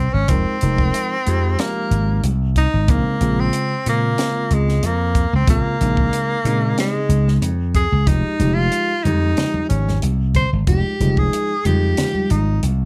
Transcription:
Already playing: C4
0.13 G#1 C#4
0.28 F1 F3 G#3 C4 D#4 A#4, kick, closed hi-hat
0.61 F1 F3 G#3 D#4 A#4, closed hi-hat
0.78 kick
0.94 closed hi-hat
1.26 F2 F3 G#3 D#4 G4, closed hi-hat
1.59 A#3, snare, closed hi-hat
1.91 G#1, closed hi-hat
2.23 C2, closed hi-hat
2.56 D#4, kick, closed hi-hat
2.74 G#1
2.88 A#1 C#3 G#3 A#3 C4 D#4, kick, closed hi-hat
3.20 A#1 C#3 G#3 C4 F4, closed hi-hat
3.40 C4
3.53 closed hi-hat
3.86 A#2 C#3 G#3 A#3 C4 F4, closed hi-hat
4.18 snare, closed hi-hat
4.51 C#2 G#3, closed hi-hat
4.69 snare
4.83 F2 A#3, closed hi-hat
5.15 kick, closed hi-hat
5.33 C#2 C4
5.47 A#1 C#3 G#3 A#3 C4 F4, kick, closed hi-hat
5.80 A#1 C#3 G#3 C4 D#4, closed hi-hat
5.97 kick
6.13 closed hi-hat
6.45 A#2 C#3 G#3 C4 D#4, closed hi-hat
6.78 G#3, snare, closed hi-hat
7.09 C#2, closed hi-hat
7.28 snare
7.41 F2, closed hi-hat
7.75 G#4, kick, closed hi-hat
7.92 C#2
8.07 F1 F3 G#3 D#4 G4, kick, closed hi-hat
8.40 F1 F3 G#3 D#4 G4, closed hi-hat, high conga, low conga
8.54 F4
8.72 closed hi-hat
9.03 F2 F3 G#3 D#4 G4, closed hi-hat, high conga, low conga
9.37 snare, closed hi-hat, low conga
9.54 high conga
9.69 G#1 C#4, closed hi-hat
9.88 snare, high conga
10.02 C2, closed hi-hat
10.35 C5, kick, closed hi-hat, low conga
10.53 G#1
10.67 F1 F3 G#3 D#4 G4, kick, closed hi-hat
11.00 F1 F3 G#3 D#4 G#4, closed hi-hat, high conga, low conga
11.17 G#4, kick
11.33 closed hi-hat
11.65 F2 F3 G#3 D#4 F4 G4, closed hi-hat, high conga, low conga
11.97 snare, closed hi-hat, low conga
12.15 high conga
12.30 G#1 D#4, closed hi-hat
12.63 C2, closed hi-hat

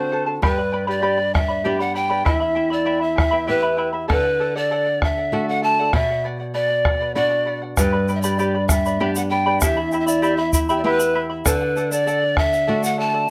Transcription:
Already playing: D3 C4 D4 F#4 A4 C5 A5
0.12 A4 C5 F#5 A5
0.26 A4 C5 A5, bombo rim
0.42 G2 G4 B4 D5 G5 B5, bombo rim, bombo low
0.58 B4 D5 B5, bombo rim
0.72 B4 D5 G5 B5
0.87 G4 B4 D5 G5 B5
1.02 G4 B4 D5 G5 B5, bombo rim
1.18 B4 D5 B5
1.34 B4 D5 E5 G5 B5, bombo rim, bombo low
1.48 B4 D5 B5
1.64 B3 D4 G4 B4 D5 G5 B5, bombo rim
1.79 B4 D5 F#5 B5
1.94 B4 D5 G5 B5, bombo rim
2.09 G4 B4 D5 G5 B5
2.25 E2 E4 B4 E5 G5 B5, bombo rim, bombo low
2.40 E4 E5 B5, bombo rim
2.55 E4 E5 G5 B5
2.70 E4 D5 E5 B5
2.85 E4 B4 E5 G5 B5, bombo rim
3.00 E4 E5 B5
3.16 E4 E5 G5 B5, bombo rim, bombo low
3.31 E4 B4 E5 G5 B5
3.47 B3 E4 G4 B4 E5 G5 B5, bombo rim
3.63 E4 E5 B5
3.77 E4 E5 G5 B5, bombo rim
3.93 E4 E5 B5
4.08 D3 A4 B4 D5 F#5, bombo rim, bombo low
4.23 D5 F#5, bombo rim
4.40 A4 D5 F#5
4.55 A4 D5 F#5
4.71 A4 D5 F#5, bombo rim
4.86 D5 F#5
5.02 A4 D5 E5 F#5, bombo rim, bombo low
5.17 D5 F#5
5.32 A3 D4 F#4 A4 D5 F#5, bombo rim
5.48 D5 F#5
5.62 A4 D5 F#5 A5, bombo rim
5.79 A4 D5 F#5
5.93 B2 B4 D5 E5 F#5, bombo rim, bombo low
6.09 D5 F#5, bombo rim
6.24 B4 D5 F#5, bombo rim
6.40 D5 F#5
6.54 B4 D5 F#5
6.69 D5 F#5
6.85 B4 D5 F#5, bombo rim, bombo low
7.00 B4 D5 F#5
7.15 B3 D4 F#4 B4 D5 F#5
7.30 D5 F#5, bombo rim
7.46 B4 D5 F#5
7.62 D5 F#5, bombo rim
7.77 G2 G4 B4 D5 G5 B5, bombo rim, bombo low, shaker
7.93 B4 D5 B5, bombo rim
8.08 B4 D5 G5 B5, shaker
8.15 E5
8.21 G4 B4 D5 G5 B5, shaker
8.39 G4 B4 D5 G5 B5, bombo rim, shaker
8.55 B4 D5 B5
8.68 B4 D5 E5 G5 B5, bombo rim, bombo low, shaker
8.85 B4 D5 B5, shaker
9.00 B3 D4 G4 B4 D5 G5 B5, bombo rim
9.16 B4 D5 F#5 B5, shaker
9.30 B4 D5 G5 B5, bombo rim
9.46 G4 B4 D5 G5 B5
9.61 E2 E4 G4 E5 G5 B5, bombo rim, bombo low, shaker
9.77 E4 E5 B5, bombo rim
9.92 E4 E5 G5 B5, shaker
10.00 E5
10.07 E4 D5 E5 B5, shaker
10.22 E4 G4 E5 G5 B5, bombo rim, shaker
10.37 E4 E5 B5
10.53 E4 E5 G5 B5, bombo low, shaker
10.69 E4 G4 E5 G5 B5, shaker
10.78 D5
10.84 B3 E4 G4 B4 E5 G5 B5, bombo rim
10.99 E4 E5 B5, shaker
11.14 E4 E5 G5 B5, bombo rim
11.30 E4 E5 B5
11.45 D3 A4 B4 D5 F#5, bombo rim, bombo low, shaker
11.61 D5 F#5, bombo rim
11.76 A4 D5 F#5, shaker
11.91 A4 D5 F#5, shaker
12.07 A4 D5 F#5, bombo rim, shaker
12.21 D5 F#5
12.37 A4 D5 E5 F#5, bombo rim, bombo low
12.53 D5 F#5, shaker
12.67 A3 D4 F#4 A4 D5 F#5, bombo rim
12.83 D5 F#5, shaker
12.97 A4 D5 F#5 A5, bombo rim
13.14 A4 D5 F#5

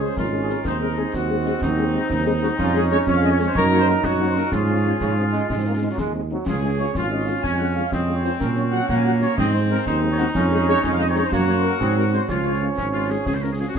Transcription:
Already playing: G#3 C#4 G#4
0.01 G#3 C#4 G#4 C5
0.17 G#1 F4 A#4, concert bass drum, snare
0.33 G#3 C#4 G#4
0.41 G#4
0.49 G#3 C#4 G#4 A#4, snare
0.64 D#2 G#3 C4 D#4 C5, concert bass drum, snare
0.81 G#3 C4 G#4 A#4
0.97 G#3 C4 G#4
1.14 D#2 F#4, concert bass drum, snare
1.30 G#3 C4 G#4
1.46 G#3 C4 G#4, snare
1.62 D#2 D#4, concert bass drum, snare
1.78 G#3 C4 G#4
1.94 G#3 C4 G#4
2.10 D#2, concert bass drum, snare
2.26 G#3 C4 G#4
2.42 G#3 C4 F#4 G#4, snare
2.58 F2 G#3 C#4 F4, concert bass drum, snare, crash
2.75 G#3 C#4 G#4
2.91 G#3 C#4 G#4 C#5
3.07 F2 C#4 C#5, concert bass drum, snare
3.15 F5
3.23 G#3 C#4 G#4 D#5
3.31 C#5
3.39 G#3 C#4 G#4 C#5, snare
3.47 C5
3.55 F#2 F#3 D#4 A#4 C#5, concert bass drum, snare
3.72 A#3 D#4 F#4 C#5
3.79 C5
3.87 A#3 D#4 F#4 A#4
4.03 F#2 F#4 C#5, concert bass drum, snare
4.20 A#3 D#4 F#4
4.28 C5
4.35 A#3 D#4 F#4 A#4, snare
4.51 G#2 F3 C#4 F4 G#4, concert bass drum, snare
4.69 G#3 C#4 F4
4.85 G#3 C#4 F4
5.00 G#2 C#3, concert bass drum, snare
5.17 F3 G#3 C#4 F4
5.32 G#3 C#4 F4, snare
5.49 G#2 G#3, concert bass drum, snare
5.58 C4
5.66 G#3 A#3 C4 D#4
5.75 G#3
5.82 G#3 C4 D#4
5.90 F#3
5.98 D#2 G#3, concert bass drum, snare
6.14 G#3 C4 D#4
6.30 F#3 G#3 C4 D#4
6.46 C#2 C#4 F4 G#4, concert bass drum, snare, crash
6.62 G#3 C#4 F4 G#4
6.78 G#3 C#4 F4 C#5
6.94 G#1 F4 C#5, concert bass drum, snare
7.02 F5
7.10 G#3 C#4 F4 D#5
7.25 G#3 C#4 F4 F5, snare
7.42 F2 G#3 C#4 G#5, concert bass drum, snare
7.58 G#3 C#4 F4 F#5
7.74 G#3 C#4 F4 F5
7.91 F2 C4 D#5, concert bass drum, snare
8.08 G#3 C#4 F4
8.15 C#5
8.24 G#3 C#4 F4 C5, snare
8.40 A#2 F#3 C#4 A#4, concert bass drum, snare
8.55 F#3 C#4 F#4 C#5
8.71 F#3 C#4 F#4 F#5
8.88 A#2 A#3 F#5, concert bass drum, snare
8.97 G#5
9.04 F#3 C#4 F#4 F#5
9.21 F#3 C#4 F#4 C#5, snare
9.37 G#2 G#3 C4 D#5, concert bass drum, snare
9.53 G#3 C4 D#4 C5
9.69 G#3 C4 D#4 A#4
9.86 D#2 D#4 C5, concert bass drum, snare
10.02 G#3 C4 D#4
10.11 C#5
10.18 G#3 C4 D#4 F#4, snare
10.34 F2 G#3 C#4 F4, concert bass drum, snare, crash
10.51 G#3 C#4 G#4
10.67 G#3 C#4 G#4 C#5
10.82 F2 G#3 C#4 C#5, concert bass drum, snare
10.92 F5
11.00 G#3 C#4 G#4 D#5
11.08 C4 C#5
11.16 G#3 C#4 G#4 C#5, snare
11.25 C5
11.31 F#2 F#3 A#3 F#4 C#5, concert bass drum, snare
11.48 A#3 C#4 F#4 C#5
11.56 C5
11.63 A#3 C#4 F#4 A#4
11.80 G#2 F#3 C4 G#4, concert bass drum, snare
11.97 G#3 C4 F#4 A#4
12.13 G#3 C4 F#4 C5, snare
12.28 C#2 F3 C#4 F4 C#5, concert bass drum, snare
12.45 G#3 C#4 F4
12.62 G#3 C#4 F4
12.77 G#1 C#4, concert bass drum, snare
12.93 G#3 C#4 F4
13.10 G#3 C#4 F4 G#4, snare
13.26 C#2 G#4, concert bass drum, snare
13.35 C5
13.42 G#3 C#4 F4 A#4
13.52 G#4
13.59 G#3 C#4 F4 G#4
13.68 F#4
13.75 G#1 G#4, concert bass drum, snare

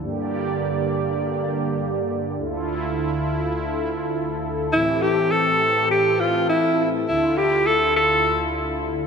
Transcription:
Already playing: D3
0.02 G2 A#3 G4 D5
2.37 D2 E4 F4 A4
4.72 A2 E3 C4 E4 G4
5.02 G4
5.31 A4
5.91 G4
6.20 F4
6.49 E4
7.08 D2 D3 E4 F4
7.37 G4
7.67 A4
7.96 A4

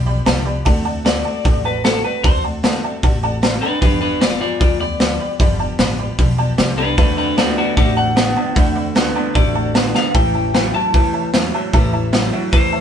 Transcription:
Already playing: B1
0.06 F3 G3 B3 G4 D5 G5 B5
0.26 C2 G2 D3 F3 G3 B3 G4 D5 G5 A5, snare, open hi-hat
0.45 F3 G3 B3 G4 D5 G5 B5
0.65 D2 D3 A3 C4 F#4 D5 F#5 A5, kick, open hi-hat
0.85 A3 C4 F#4 D5 F#5 A5
1.05 D3 A3 C4 F#4 D5 F#5 A5, snare, open hi-hat
1.24 A3 C4 F#4 D5 F#5 A5
1.44 A1 D3 A3 C4 F#4 D5 F#5 A5, kick, open hi-hat
1.64 A3 C4 F#4 B4 D5 F#5 A5
1.84 D3 A3 C4 F#4 A4 D5 F#5 A5, snare, open hi-hat
2.04 A3 C4 F#4 B4 D5 F#5 A5
2.23 D2 D3 A3 C4 F#4 C5 D5 F#5 A5, kick, open hi-hat
2.44 A3 C4 F#4 D5 F#5 A5
2.63 D3 A3 C4 F#4 D5 F#5 A5, snare, open hi-hat
2.83 A3 C4 F#4 D5 F#5 A5
3.02 A1 D3 A3 C4 F#4 D5 F#5 A5, kick, open hi-hat
3.22 A3 C4 F#4 D5 F#5 A5
3.42 D3 A3 C4 F#4 D5 F#5 A5, snare, open hi-hat
3.61 A3 C4 D4 F#4 B4 D5 F#5 A5
3.81 G1 G2 D3 F3 G3 B3 D4 G4 B4 D5 G5 B5, kick, open hi-hat
4.01 F3 G3 B3 D4 G4 B4 D5 G5 B5
4.20 G2 D3 F3 G3 B3 F4 G4 D5 G5 B5, snare, open hi-hat
4.41 F3 G3 B3 F4 G4 D5 G5 B5
4.60 D2 F3 G3 B3 F4 G4 D5 G5 B5, kick, open hi-hat
4.80 F3 G3 B3 G4 D5 G5 B5
5.00 G2 D3 F3 G3 B3 G4 D5 G5 B5, snare, open hi-hat
5.20 F3 G3 B3 G4 D5 G5 B5
5.39 G1 G2 D3 F3 G3 B3 G4 D5 G5 B5, kick, open hi-hat
5.59 F3 G3 B3 G4 D5 G5 A5
5.79 A1 G2 D3 F3 G3 B3 G4 D5 G5 B5, snare, open hi-hat
5.99 F3 G3 B3 G4 D5 G5 B5
6.18 B1 F3 G3 B3 G4 D5 G5 B5, kick, open hi-hat
6.38 F3 G3 B3 G4 D5 G5 A5
6.58 C2 G2 D3 F3 G3 B3 G4 D5 G5 D6, snare, open hi-hat
6.77 F3 G3 B3 D4 G4 B4 D5 G5 B5
6.97 D2 D3 A3 C4 D4 F#4 B4 D5 F#5 A5, kick, open hi-hat
7.17 A3 C4 D4 F#4 B4 D5 F#5 A5
7.37 D3 A3 B3 C4 F#4 D5 F#5 A5, snare, open hi-hat
7.57 D3 A3 B3 C4 F#4 D5 F#5 A5
7.77 A1 D3 A3 C4 F#4 D5 F#5 A5, kick, open hi-hat
7.96 A3 C4 F#4 D5 F#5 A5
8.16 D3 A3 B3 C4 F#4 D5 F#5 A5, snare, open hi-hat
8.35 D3 A3 B3 C4 F#4 D5 F#5 A5
8.55 D2 D3 A3 C4 F#4 D5 F#5 B5, kick, open hi-hat
8.75 A3 C4 F#4 D5 F#5 B5
8.95 D3 A3 B3 C4 F#4 D5 F#5 A5, snare, open hi-hat
9.14 D3 A3 B3 C4 F#4 D5 F#5 A5
9.34 A1 D3 A3 C4 F#4 D5 F#5 A5, kick, open hi-hat
9.54 A3 C4 F#4 D5 F#5 A5
9.74 D3 A3 B3 C4 F#4 D5 F#5 A5, snare, open hi-hat
9.94 D3 A3 B3 C4 F#4 D5 F5 F#5 A5, snare
10.14 A1 A2 E3 G3 C#4 E4 C#5 E5 G5 A5, kick, open hi-hat
10.34 G3 C#4 E4 C#5 E5 A5
10.54 A2 E3 F#3 G3 C#4 E4 C#5 E5 A5, snare, open hi-hat
10.74 A2 F#3 G3 C#4 E4 C#5 E5 A5
10.94 E2 A2 E3 G3 C#4 E4 C#5 E5 A5, kick, open hi-hat
11.13 G3 C#4 E4 C#5 E5 A5
11.34 A2 E3 F#3 G3 C#4 E4 C#5 E5 G5, snare, open hi-hat
11.54 A2 F#3 G3 C#4 E4 C#5 E5 A5
11.73 A1 A2 E3 G3 C#4 E4 C#5 E5 A5, kick, open hi-hat
11.93 G3 C#4 E4 C#5 E5 A5
12.13 A2 E3 F#3 G3 C#4 E4 C#5 E5 F#5, snare, open hi-hat
12.32 A2 F#3 G3 C#4 E4 C#5 E5 F#5
12.52 E2 A2 E3 G3 C#4 E4 C5 C#5 E5 A5, kick, open hi-hat
12.72 G3 C#4 E4 C#5 E5 A5

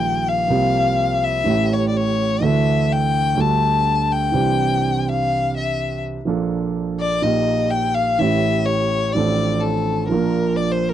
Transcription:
Already playing: A#1 A#2 D#3 G3 A#3 F4 G5
0.29 F5
0.48 C2 C3 F3 A#3 C4
0.52 G4
1.24 E5
1.44 A1 A2 E3 A3 C#4 G4
1.73 C#5
1.89 D5
1.97 C#5
2.40 D2 D3 E3 A3 D4
2.44 A4 E5
2.92 G5
3.35 D2 D3 G3 A3 D4 A4
3.41 A5
4.12 G5
4.32 C2 C3 E3 C4 D4 G4
5.09 F5
5.57 E5
6.25 A#1 A#2 F3 A#3 D4
6.29 A4
7.00 D5
7.22 A#1 A#2 F3 A#3 D#4 G4 D#5
7.70 G5
7.95 F5
8.18 A1 A2 E3 A3 C#4 E5
8.23 G4
8.66 C#5
9.13 A1 A2 F3 C4 D5
9.17 D4 A4
9.60 A4
10.08 A#1 A#2 F3 A#3 D4 A#4
10.13 A#4
10.57 D5
10.72 C5
10.89 A#4

